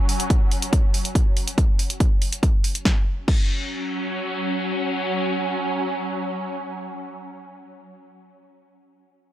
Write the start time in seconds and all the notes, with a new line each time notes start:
Already playing: F#3 C#4
0.09 open hi-hat
0.20 closed hi-hat
0.30 kick, closed hi-hat
0.51 open hi-hat
0.62 closed hi-hat
0.73 kick, closed hi-hat
0.94 open hi-hat
1.05 closed hi-hat
1.15 kick, closed hi-hat
1.37 open hi-hat
1.48 closed hi-hat
1.58 kick, closed hi-hat
1.79 open hi-hat
1.90 closed hi-hat
2.00 kick, closed hi-hat
2.22 open hi-hat
2.33 closed hi-hat
2.43 kick, closed hi-hat
2.64 open hi-hat
2.75 closed hi-hat
2.85 F#3 C#4, kick, snare
3.28 kick, crash